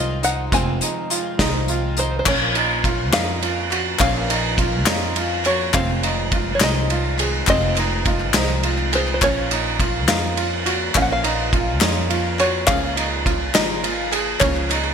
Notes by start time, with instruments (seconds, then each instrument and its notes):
Already playing: felt piano F1 F2 F3 D#4 G#4 A#4 C5, upright bass C2, twelve-string acoustic guitar D#3 G#3 C4 F4, upright piano F4, five-string banjo D#5
0.23 twelve-string acoustic guitar D#3 G#3 C4 F4, upright piano D#4, five-string banjo F#5, closed hi-hat
0.52 felt piano F1 F2 F3 D#4 G#4 C5, upright bass F1, twelve-string acoustic guitar F2 C3 D#3 G#3 C4 F4, upright piano C4, five-string banjo G#5, kick, closed hi-hat
0.81 twelve-string acoustic guitar D#3 G#3 C4 F4, upright piano D#4, closed hi-hat
1.10 twelve-string acoustic guitar D#3 G#3 C4 F4, upright piano F4, closed hi-hat
1.38 upright bass C2, twelve-string acoustic guitar F2 C3 D#3 G#3 C4 F4, felt piano F3 D#4 G#4 C5, upright piano D#4, kick, snare, closed hi-hat
1.68 twelve-string acoustic guitar D#3 G#3 C4 F4, upright piano F4, closed hi-hat
1.97 twelve-string acoustic guitar D#3 G#3 C4 F4, upright piano D#4, five-string banjo C5, closed hi-hat
2.19 five-string banjo C5
2.24 felt piano A#1 A#2 F3 C#4 A#4 C#5, upright bass A#1, twelve-string acoustic guitar A#2 F3 A#3 C#4 F4, upright piano C#4, five-string banjo C#5, kick, clap, crash
2.54 twelve-string acoustic guitar A#3 C#4 F4, upright piano D#4, ride
2.83 twelve-string acoustic guitar F3 A#3 C#4 F4, upright piano F4, kick, ride
3.12 upright bass F2, twelve-string acoustic guitar A#2 F3 A#3 C#4 F4, felt piano F3 C#4 A#4 C#5, upright piano D#4, five-string banjo F5, snare, clap, ride
3.40 twelve-string acoustic guitar F3 A#3 C#4 F4, upright piano F4, ride
3.69 twelve-string acoustic guitar A#3 C#4 F4, upright piano F#4, clap, ride
3.98 felt piano A#1 A#2 F3 C#4 A#4 C#5, upright bass A#1, twelve-string acoustic guitar A#2 F3 A#3 C#4 F4, upright piano C#4, five-string banjo F5, kick, clap, ride
4.27 twelve-string acoustic guitar A#3 C#4 F4, upright piano D#4, ride
4.57 twelve-string acoustic guitar F3 A#3 C#4 F4, upright piano F4, kick, ride
4.85 upright bass F2, twelve-string acoustic guitar A#2 F3 A#3 C#4 F4, felt piano F3 C#4 A#4 C#5, upright piano D#4, snare, clap, ride
5.14 twelve-string acoustic guitar F3 A#3 C#4 F4, upright piano F4, ride
5.44 twelve-string acoustic guitar A#3 C#4 F4, upright piano F#4, five-string banjo C#5, clap, ride
5.73 felt piano F1 F2 F3 D#4 G#4 C5, upright bass F1, twelve-string acoustic guitar F2 C3 D#3 G#3 C4 F4, upright piano C4, five-string banjo F5, kick, clap, ride
6.02 twelve-string acoustic guitar D#3 G#3 C4 F4, upright piano D#4, ride
6.32 twelve-string acoustic guitar D#3 G#3 C4 F4, upright piano F4, kick, ride
6.55 five-string banjo C#5
6.60 upright bass C2, twelve-string acoustic guitar F2 C3 D#3 G#3 C4 F4, felt piano F3 D#4 G#4 C5, upright piano D#4, five-string banjo D#5, snare, clap, ride
6.90 twelve-string acoustic guitar D#3 G#3 C4 F4, upright piano F4, ride
7.18 twelve-string acoustic guitar D#3 G#3 C4 F4, upright piano G#4, clap, ride
7.47 upright bass F1, felt piano F1 F2 F3 D#4 G#4 D#5, twelve-string acoustic guitar F2 C3 D#3 G#3 C4 F4, upright piano C4, five-string banjo D#5, kick, clap, ride
7.62 clap
7.76 twelve-string acoustic guitar D#3 G#3 C4 F4, upright piano D#4, clap, ride
8.05 twelve-string acoustic guitar D#3 G#3 C4 F4, upright piano F4, kick, clap, ride
8.20 clap
8.34 upright bass C2, twelve-string acoustic guitar F2 C3 D#3 G#3 C4 F4, felt piano F3 D#4 G#4 C5, upright piano D#4, snare, clap, ride
8.49 clap
8.63 twelve-string acoustic guitar D#3 G#3 C4 F4, upright piano F4, ride
8.78 clap
8.92 twelve-string acoustic guitar D#3 G#3 C4 F4, upright piano G#4, five-string banjo C5, clap, ride
9.07 clap
9.14 five-string banjo C5
9.21 upright bass A#1, felt piano A#1 A#2 F3 C#4 A#4 C#5, twelve-string acoustic guitar A#2 F3 A#3 C#4 F4, upright piano C#4, five-string banjo C#5, kick, clap, ride
9.50 twelve-string acoustic guitar A#3 C#4 F4, upright piano D#4, ride
9.78 twelve-string acoustic guitar F3 A#3 C#4 F4, upright piano F4, kick, ride
10.07 upright bass F2, twelve-string acoustic guitar A#2 F3 A#3 C#4 F4, felt piano F3 C#4 A#4 C#5, upright piano D#4, five-string banjo F5, snare, clap, ride
10.37 twelve-string acoustic guitar F3 A#3 C#4 F4, upright piano F4, ride
10.65 twelve-string acoustic guitar A#3 C#4 F4, upright piano F#4, clap, ride
10.94 upright bass A#1, felt piano A#1 A#2 F3 C#4 A#4 D#5, twelve-string acoustic guitar A#2 F3 A#3 C#4 F4, upright piano C#4, five-string banjo F5, kick, clap, ride
11.02 five-string banjo F#5
11.12 five-string banjo F5
11.23 twelve-string acoustic guitar A#3 C#4 F4, upright piano D#4, ride
11.52 twelve-string acoustic guitar F3 A#3 C#4 F4, upright piano F4, kick, ride
11.80 upright bass F2, twelve-string acoustic guitar A#2 F3 A#3 C#4 F4, felt piano F3 C#4 A#4 C#5, upright piano D#4, snare, clap, ride
12.09 twelve-string acoustic guitar F3 A#3 C#4 F4, upright piano F4, ride
12.39 twelve-string acoustic guitar A#3 C#4 F4, upright piano F#4, five-string banjo C#5, clap, ride
12.66 felt piano C#2 C#3 F3 A#3 G#4 C#5, upright bass C#2, twelve-string acoustic guitar C#3 F3 A#3 F4, upright piano C#4, five-string banjo F5, kick, clap, ride
12.70 twelve-string acoustic guitar G#4
12.96 twelve-string acoustic guitar A#3 F4 G#4, upright piano D#4, ride
13.25 twelve-string acoustic guitar F3 A#3 F4 G#4, upright piano F4, kick, ride
13.54 upright bass G#1, twelve-string acoustic guitar C#3 F3 A#3 F4 G#4, felt piano F3 A#3 G#4 C5, upright piano D#4, five-string banjo D#5, snare, clap, ride
13.83 twelve-string acoustic guitar F3 A#3 F4 G#4, upright piano F4, ride
14.11 twelve-string acoustic guitar A#3 F4 G#4, upright piano G#4, clap, ride
14.40 felt piano C#2 C#3 F3 A#3 G#4 C#5, upright bass C#2, twelve-string acoustic guitar C#3 F3 A#3 F4 G#4, upright piano C#4, five-string banjo C#5, kick, clap, ride
14.56 clap
14.69 twelve-string acoustic guitar A#3 F4 G#4, upright piano D#4, clap, ride
14.84 clap